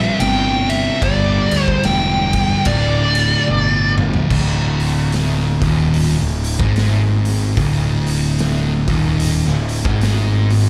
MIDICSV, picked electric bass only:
0, 0, Header, 1, 2, 480
1, 0, Start_track
1, 0, Tempo, 817439
1, 602, Time_signature, 4, 2, 24, 8
1, 6280, End_track
2, 0, Start_track
2, 0, Title_t, "Picked electric bass"
2, 0, Program_c, 0, 34
2, 119, Note_on_c, 0, 31, 93
2, 516, Note_off_c, 0, 31, 0
2, 600, Note_on_c, 0, 31, 103
2, 841, Note_off_c, 0, 31, 0
2, 893, Note_on_c, 0, 38, 101
2, 1050, Note_off_c, 0, 38, 0
2, 1078, Note_on_c, 0, 28, 105
2, 1477, Note_off_c, 0, 28, 0
2, 1562, Note_on_c, 0, 26, 97
2, 1960, Note_off_c, 0, 26, 0
2, 2050, Note_on_c, 0, 31, 93
2, 2445, Note_off_c, 0, 31, 0
2, 2529, Note_on_c, 0, 26, 98
2, 3277, Note_off_c, 0, 26, 0
2, 3300, Note_on_c, 0, 27, 102
2, 3611, Note_off_c, 0, 27, 0
2, 3642, Note_on_c, 0, 26, 81
2, 3862, Note_off_c, 0, 26, 0
2, 3873, Note_on_c, 0, 32, 101
2, 4424, Note_off_c, 0, 32, 0
2, 4448, Note_on_c, 0, 26, 98
2, 5192, Note_off_c, 0, 26, 0
2, 5213, Note_on_c, 0, 27, 101
2, 5524, Note_off_c, 0, 27, 0
2, 5549, Note_on_c, 0, 26, 73
2, 5771, Note_off_c, 0, 26, 0
2, 5787, Note_on_c, 0, 32, 100
2, 6280, Note_off_c, 0, 32, 0
2, 6280, End_track
0, 0, End_of_file